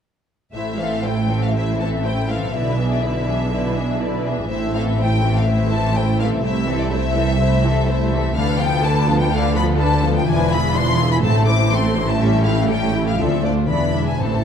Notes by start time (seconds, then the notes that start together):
0.54 A1 A2 A3 E4 C5 E5
0.71 C4
0.78 E3 C4 A4 E5 F5
0.88 E4
1.04 A3 E4 A4 C5 G5
1.22 C4
1.30 E3 C4 A4 E5
1.39 E3 F5
1.54 A3 C4 E4 C5 E5
1.72 E3
1.80 E3 C4 A4 E5 A5
1.89 E4
2.04 A3 E4 A4 C5 G5
2.22 C4
2.28 E3 C4 A4 E5 F5
2.38 E3
2.53 B1 B2 D3 E4 B4 D5 E5
2.69 D4
2.77 E3 D4 G#4 E5
2.87 E4
2.91 D5
3.01 D3 E4 G#4 B4 D5 E5
3.20 D4
3.27 E3 D4 G#4 E5
3.36 B3
3.52 D3 D4 E4 B4 D5
3.69 B3
3.76 E3 D4 G#4 E5
3.86 E4
4.00 D3 E4 G#4 B4 D5
4.18 D4
4.26 E3 D4 G#4 E5
4.34 B3
4.49 A1 A2 A3 E4 C5 E5
4.67 C4
4.74 E3 C4 A4 E5 F5
4.84 E4
4.99 A3 E4 A4 C5 G5
5.16 C4
5.24 E3 C4 A4 E5
5.32 E3 F5
5.46 A3 C4 E4 C5 E5
5.64 E3
5.71 E3 C4 A4 E5 A5
5.81 E4
5.95 A3 E4 A4 C5 G5
6.12 C4
6.19 E3 C4 A4 E5 F5
6.28 E3
6.44 C2 C3 A3 E4 C5 E5
6.60 C4
6.69 E3 C4 A4 E5
6.77 E4 D5
6.92 A3 E4 A4 C5 E5
7.09 C4
7.16 E3 C4 A4 E5
7.25 A3
7.40 C3 A3 E4 C5
7.57 C4
7.65 E3 C4 A4 E5
7.72 E4
7.88 A3 E4 A4 C5
8.03 C4
8.12 E3 C4 A4 E5
8.19 A3
8.35 D2 D3 D4 A4 B4 F5
8.51 B3
8.59 F3 B3 F4 A4 G5
8.68 F4
8.84 D3 D4 A4 B4 A5
9.00 B3
9.08 F3 B3 F4 A4
9.16 A3 G5
9.31 D3 D4 A4 B4 F5
9.47 B3
9.56 F3 B3 F4 A4 B5
9.63 F4
9.79 D3 D4 A4 B4 A5
9.96 B3
10.03 F3 B3 F4 A4
10.11 A3
10.16 G5
10.26 E1 E2 E3 F3 D4 E4 B4 G#5
10.43 D4
10.51 E3 E4 F4 G#4 B5
10.60 F4
10.75 F3 D4 E4 B4 C6
10.91 D4
10.99 E3 E4 F4 G#4
11.08 B3
11.12 B5
11.22 A1 A2 A3 C4 A4 A5
11.40 C4
11.47 E3 A3 E4 C5 D6
11.56 E4
11.71 A3 C4 A4 C6
11.88 C4
11.96 E3 A3 E4 C5
12.04 E3
12.09 A5
12.20 A2 G3 C#4 G4 A4 E5
12.37 C#4
12.44 A3 E4 G4 F5
12.53 E4
12.68 G3 C#4 G4 A4 G5
12.85 C#4
12.93 A3 E4 G4
13.02 E3
13.07 F5
13.18 D2 D3 F3 C4 D4 A4 E5
13.35 C4
13.43 A3 D4 F4 C5 D5
13.52 F4 A4
13.68 E1 E2 E3 B3 D4 D5 B5
13.85 D4
13.94 G#3 D4 E4 E5
14.02 E4 G#4
14.07 G#5
14.20 A1 A2 E3 C4 A4 C5 A5
14.29 A2
14.36 A2 C4